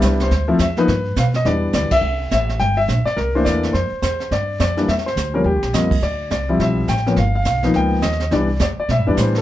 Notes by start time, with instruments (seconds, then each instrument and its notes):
Already playing: grand piano G3 B3 D4 E4
0.01 upright bass C2, kick, snare, hi-hat pedal
0.20 grand piano C5, snare
0.30 upright bass D2, brush sweep, kick, snare
0.48 grand piano F3 A3 C4 E4
0.59 upright bass E2, grand piano E5, kick, snare, hi-hat pedal
0.77 grand piano F3 A#3 B3 D#4 B4, snare
0.88 upright bass G2, brush sweep, kick, snare
1.16 upright bass B2, grand piano F5, kick, snare, hi-hat pedal
1.34 grand piano D#5, snare
1.45 upright bass E2, grand piano E3 G3 B3 D4 D5, brush sweep, kick, snare
1.73 upright bass D2, grand piano D5, kick, snare, hi-hat pedal
1.91 grand piano E5, muted upright bass stroke, kick, ride
2.01 upright bass C2, brush sweep
2.31 upright bass A1, grand piano E5, kick, snare, hi-hat pedal
2.49 snare
2.60 upright bass G1, grand piano G5, brush sweep, kick, snare
2.77 grand piano E5
2.88 upright bass A#1, kick, snare, hi-hat pedal
3.04 grand piano D5, muted upright bass stroke, snare
3.17 upright bass C2, grand piano A#4, brush sweep, kick, snare
3.35 grand piano E3 A3 A#3 D4 C5
3.45 upright bass E2, grand piano D5, kick, snare, hi-hat pedal
3.63 snare
3.73 upright bass F2, grand piano C5, brush sweep, kick, snare
3.91 muted upright bass stroke
4.02 upright bass E2, grand piano C5, kick, snare, hi-hat pedal
4.20 snare
4.31 upright bass G2, grand piano D5, brush sweep, kick, snare
4.59 upright bass F2, grand piano D5, kick, snare, hi-hat pedal
4.77 grand piano E3 G3 A#3 D4, snare
4.88 upright bass E2, grand piano E5, brush sweep, kick, snare
4.98 snare
5.06 grand piano C5, snare
5.16 upright bass D2, kick, snare, hi-hat pedal
5.34 grand piano F3 G3 A#3 C#4 A#4
5.44 upright bass D#2, grand piano G4
5.55 upright bass C#2
5.63 upright bass A#1, snare
5.73 upright bass F2, grand piano F3 G3 A#3 C4 D#5, snare, hi-hat pedal
5.91 kick, crash
6.02 upright bass D2, grand piano D5, brush sweep, kick, snare
6.31 upright bass C2, grand piano D5, kick, snare, hi-hat pedal
6.49 grand piano F3 G3 C4 E4
6.60 upright bass B1, grand piano E5, brush sweep, kick, snare
6.88 upright bass A1, grand piano G5, kick, snare, hi-hat pedal
6.97 snare
7.06 grand piano F3 A#3 B3 C#4, snare
7.16 upright bass G1, grand piano F5, brush sweep, kick, snare
7.35 grand piano F5
7.45 upright bass B1, grand piano F5, kick, snare, hi-hat pedal
7.63 grand piano F3 A#3 B3 D#4, snare
7.74 upright bass C#2, grand piano G5, brush sweep, kick, snare
8.02 upright bass D#2, grand piano D#5, kick, snare, hi-hat pedal
8.12 snare
8.20 snare
8.22 snare
8.31 upright bass C2, grand piano E3 G3 B3 D4 D5, brush sweep, kick, snare
8.59 upright bass E2, grand piano D5, kick, snare, hi-hat pedal
8.78 grand piano D5, muted upright bass stroke
8.88 upright bass B2, grand piano E5, brush sweep, kick, snare
8.98 upright bass G2
9.07 upright bass E2, grand piano E3 G3 B3 D4 D5
9.17 upright bass A2, grand piano C5, kick, snare, hi-hat pedal
9.35 grand piano A4, snare